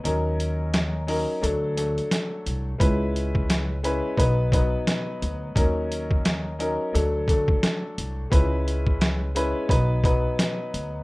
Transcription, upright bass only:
0.05 D#2
1.43 D2
2.46 C2
2.80 C#2
4.18 B1
5.22 D2
5.56 D#2
6.95 D2
7.98 C2
8.32 C#2
9.70 B1
10.74 D2

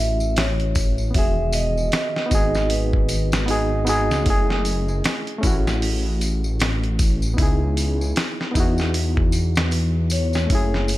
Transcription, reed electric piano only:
Already playing: A3 C#4 E4 F#4 G#4
1.11 D#3 B3
1.16 F#4 G#4
2.26 B3 D#4
2.32 F#4 G#4
3.46 B3 D#4 F#4
3.51 G#4
3.85 B3 D#4 F#4
3.89 G#4
4.22 A3 C#4
4.28 E4 G#4
5.38 A3 C#4
5.44 E4 F#4
7.34 B3 D#4
7.40 E4 G#4
8.51 B3 D#4
8.57 E4 F#4
10.47 A3 C#4
10.52 E4 G#4

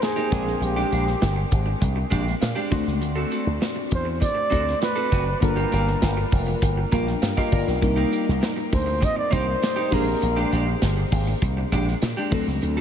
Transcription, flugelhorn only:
0.02 G#4
0.64 G4
3.95 C5
4.22 D5
4.82 B4
5.43 A#4
8.74 C5
9.04 D#5
9.18 D5
9.33 C5
9.94 A#4

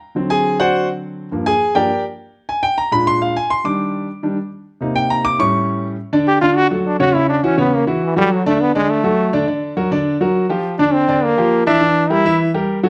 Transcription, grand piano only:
0.15 D3 F#3 C4
0.30 G#4 G#5
0.60 F#4 C5 D5 F#5
1.32 G2 F3 A#3
1.46 G#4 G#5
1.75 G2 F3 A#3 G4 A#4 D5 G5
2.49 G#5
2.63 G5
2.78 A#5
2.91 A#2 G#3 D4 B5
3.07 C6
3.22 F5
3.37 G#5
3.50 C6
3.64 D#3 G3 D4 D6
4.23 D#3 G3 D4
4.81 C3 A#3 D#4
4.96 G5
5.10 A#5
5.25 D6
5.39 A2 G3 C#4 C#6
6.13 D3 D4 D5
6.42 D3 D4 D5
6.71 F#3 F#4 A4
7.00 C#3 C#4 C#5
7.14 C#3 C#4 C#5
7.43 E3 E4 F#4
7.58 C#3 C#4 C#5
7.87 E3 E4 F#4
8.16 F#3 F#4 A4
8.46 D3 D4 D5
8.75 D3 D4 D5
9.04 F#3 F#4 A4
9.33 D3 D4 D5
9.47 D3 D4 D5
9.77 F#3 F#4 A#4
9.91 D3 D4 D5
10.21 F#3 F#4 A#4
10.49 F3 F4 G4
10.79 D3 D4 D5
11.08 D3 D4 D5
11.37 F3 F4 G4
11.67 E3 E4 E5
11.81 E3 E4 E5
12.10 G3 G4 A#4
12.25 E3 E4 E5
12.54 G3 G4 A#4
12.83 F#3 F#4 A4

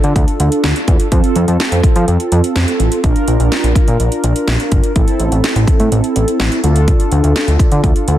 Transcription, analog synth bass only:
0.04 D3
0.16 D2
0.40 D2
0.64 D2
0.88 E2
1.12 F2
1.36 F2
1.48 F2
1.72 F2
1.96 F3
2.08 F2
2.32 F2
2.56 F2
2.80 A1
3.04 A#1
3.28 A#1
3.40 A#1
3.64 A#1
3.88 A#2
4.00 A#1
4.24 A#1
4.48 A#1
4.72 G1
4.96 A1
5.20 A1
5.32 A1
5.56 A1
5.80 A2
5.92 A1
6.16 A1
6.40 A1
6.64 D2
7.12 D2
7.24 D2
7.48 D2
7.72 D3
7.84 D2
8.08 D2

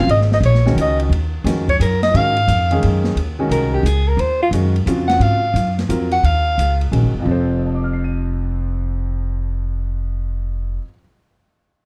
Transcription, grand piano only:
0.66 D#3 G#3 C#4 F#4
1.45 D#3 G#3 C#4 F#4
2.14 D#3 G#3 C#4 F#4
2.71 D#3 G#3 C#4 G#4
3.39 D#3 G#3 C#4 F#4
4.53 D#3 G#3 C#4 F#4
4.86 C#3 C4 F4 F#4
5.89 F#3 C4 F4 A#4
6.91 D#3 G#3 C#4 F#4
7.19 F2 F3
7.25 C4 A4
7.31 C5
7.59 D#5
7.66 A5
7.75 D6
7.84 F6
7.93 C7
8.04 D#7

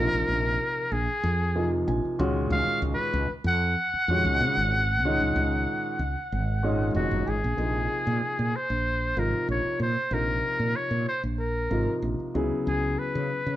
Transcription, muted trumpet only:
Already playing: A#4
0.92 G#4
2.52 F5
2.94 B4
3.47 F#5
6.95 F#4
7.29 G#4
8.55 C5
9.19 A#4
9.51 C#5
9.82 C5
10.13 A#4
10.76 C#5
11.08 C5
11.39 A#4
12.67 G#4
12.99 B4

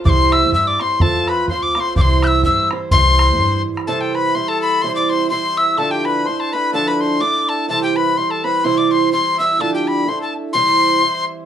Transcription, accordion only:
0.06 C5
0.32 E5
0.53 E5
0.67 D5
0.80 C5
1.01 A4
1.28 B4
1.49 C5
1.80 C5
1.96 C5
2.23 E5
2.43 E5
2.92 C5
3.87 A4
4.14 B4
4.35 C5
4.48 A4
4.83 C5
4.97 D5
5.10 C5
5.30 C5
5.57 E5
5.77 A4
5.91 G4
6.05 B4
6.25 C5
6.52 B4
6.73 A4
6.86 B4
7.00 C5
7.21 D5
7.48 A4
7.70 A4
7.82 G4
7.96 B4
8.16 C5
8.29 A4
8.43 B4
8.63 C5
8.77 D5
8.90 C5
9.12 C5
9.38 E5
9.59 A4
9.72 G4
10.08 C5
10.21 A4
10.54 C5

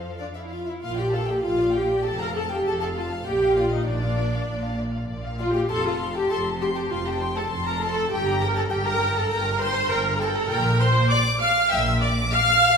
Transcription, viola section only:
Already playing: A4
0.20 D4
0.37 E4
0.52 F4
0.68 E4
0.83 F4
0.99 G4
1.14 A4
1.30 G4
1.44 F4
1.75 G4
2.06 A4
2.22 A#4
2.36 A4
2.52 G4
2.67 A4
2.82 A4
2.96 F4
3.26 G4
3.57 F4
3.73 D#4
3.87 D4
5.40 F4
5.56 G4
5.71 A4
5.86 F4
6.17 G4
6.31 A4
6.61 G4
6.77 G4
6.91 F4
7.06 G4
7.36 A4
7.67 A#4
7.81 A4
8.12 G4
8.42 A#4
8.57 A4
8.71 G4
8.85 A#4
9.16 A4
9.30 A#4
9.61 C5
9.90 A#4
10.20 A4
10.50 A#4
10.80 C5
11.10 D5
11.40 F5
11.70 E5
12.01 D5
12.31 F5

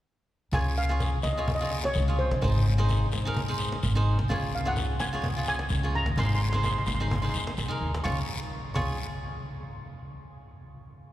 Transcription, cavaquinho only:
0.53 F4 G#4 C#5
0.89 F4 G#4 C#5
1.38 F4 G#4 C#5
1.60 F4 G#4 C#5
2.08 F4 G#4 C#5
2.42 D#4 G#4 C5
2.78 D#4 G#4 C5
3.25 D#4 G#4 A#4
3.48 D#4 G#4 C5
3.95 D#4 G#4 C5
4.29 F4 G#4 C#5
4.65 F4 G#4 C#5
5.13 F4 G#4 C#5
5.37 F4 G#4 C#5
5.83 F4 G#4 C#5
6.18 D#4 G#4 C5
6.53 D#4 G#4 C5
7.00 D#4 G#4 C5
7.22 D#4 G#4 C5
7.68 D#4 G#4 A#4
8.04 F4 G#4 C#5
8.75 F4 G#4 C#5

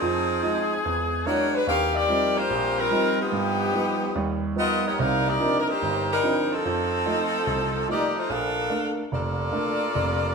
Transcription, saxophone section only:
Already playing: F3 C4 D#4 G#4
1.26 A#3 D4 F#4 C#5
1.55 G#3 D4 F#4 B4
1.69 C4 G4 A#4 F5
1.95 C4 G4 A#4 D5
2.37 A#3 F4 G4 C5
2.79 G3 C4 F4 A#4
3.21 F3 B3 D#4 G4
4.58 B3 F4 A#4 D#5
4.87 A#3 D#4 G4 C#5
5.00 D#4 A#4 D5 F5
5.28 A#3 D#4 G4 D5
5.60 A#4
5.69 A#3 D#4 G4 C5
6.12 G3 D4 D#4 A#4
6.52 F3 C4 D#4 A4
7.90 A#3 D#4 G4 D5
8.17 A3 D#4 F4 C5
8.31 D4 A4 A#4 F5
9.14 A#3 F4 A4 D5

